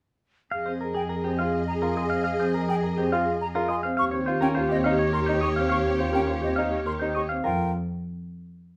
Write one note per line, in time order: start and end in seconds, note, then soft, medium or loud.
0.51 3.83 F2 medium
0.51 0.74 G#4 soft
0.51 3.81 G#4 medium
0.51 3.81 D#5 medium
0.51 0.71 F5 medium
0.66 0.86 C4 medium
0.66 0.80 C5 medium
0.81 1.04 G#4 soft
0.81 1.00 A#4 medium
0.94 1.14 G#4 medium
0.94 1.02 G5 medium
1.09 1.29 A#4 medium
1.13 1.34 G#4 medium
1.24 1.44 C4 medium
1.24 1.43 G4 medium
1.39 1.58 F4 medium
1.39 1.58 F5 medium
1.43 1.64 G#4 medium
1.68 1.74 A#5 medium
1.74 1.95 G#4 medium
1.82 2.01 F4 medium
1.82 2.01 A#4 medium
1.97 2.16 G#4 medium
1.97 2.09 D#5 medium
1.97 2.03 C6 soft
2.04 2.25 G#4 medium
2.10 2.30 C4 medium
2.10 2.23 F5 medium
2.24 2.44 F5 medium
2.32 2.54 G#4 medium
2.40 2.59 C4 medium
2.40 2.54 C5 medium
2.54 2.73 A#4 medium
2.64 2.85 G#4 medium
2.69 2.88 G#4 medium
2.69 2.75 G5 medium
2.83 3.02 A#4 medium
2.94 3.17 C4 medium
2.94 3.17 G4 medium
2.94 3.15 G#4 medium
3.12 3.31 F4 medium
3.12 3.31 F5 medium
3.24 3.45 G#4 medium
3.41 3.47 A#5 medium
3.55 3.74 F4 medium
3.55 3.76 G#4 soft
3.55 3.74 A#4 medium
3.68 3.89 G#4 medium
3.68 3.83 D#5 medium
3.68 3.76 C6 medium
3.83 4.03 C4 medium
3.83 3.96 F5 medium
3.97 7.29 D#2 medium
3.97 4.20 G4 soft
3.97 7.27 G4 medium
3.97 7.27 C#5 medium
3.97 4.11 F5 medium
3.97 4.05 C#6 medium
4.11 4.32 C4 medium
4.11 4.26 C#5 medium
4.26 4.47 F4 medium
4.26 4.50 G4 medium
4.26 4.46 C5 medium
4.41 4.61 C#4 medium
4.41 4.60 A#4 medium
4.41 4.48 G5 medium
4.55 4.75 F4 medium
4.55 4.75 C5 medium
4.59 4.80 G4 medium
4.69 4.90 C4 medium
4.69 4.89 G4 medium
4.69 4.77 D#5 medium
4.84 5.04 D#4 medium
4.84 4.99 F5 medium
4.90 5.11 G4 medium
4.99 5.18 C#5 medium
5.13 5.33 A#4 medium
5.13 5.20 C6 medium
5.19 5.41 G4 medium
5.26 5.48 D#4 medium
5.26 5.41 C5 medium
5.41 5.62 G4 medium
5.41 5.56 D#5 medium
5.41 5.49 C#6 medium
5.50 5.71 G4 medium
5.56 5.76 C4 medium
5.56 5.68 F5 medium
5.69 5.90 F5 medium
5.69 5.77 C#6 medium
5.79 6.01 G4 medium
5.84 6.05 C4 medium
5.84 5.99 C#5 medium
5.99 6.20 F4 medium
5.99 6.19 C5 medium
6.10 6.31 G4 medium
6.10 6.33 A#4 medium
6.15 6.34 C#4 medium
6.15 6.21 G5 medium
6.27 6.48 F4 medium
6.27 6.48 C5 medium
6.41 6.63 C4 medium
6.41 6.62 G4 medium
6.41 6.49 D#5 medium
6.56 6.77 D#4 medium
6.56 6.77 F5 medium
6.70 6.91 G4 soft
6.70 6.91 C#5 medium
6.86 7.06 A#4 medium
6.86 6.93 C6 medium
6.99 7.21 D#4 medium
6.99 7.21 G4 soft
6.99 7.20 C5 medium
7.15 7.35 G4 medium
7.15 7.29 D#5 medium
7.15 7.22 C#6 medium
7.29 7.50 C4 medium
7.29 7.49 F5 medium
7.44 7.72 F2 medium
7.44 7.72 F4 medium
7.44 7.71 A#4 medium
7.44 7.72 G5 medium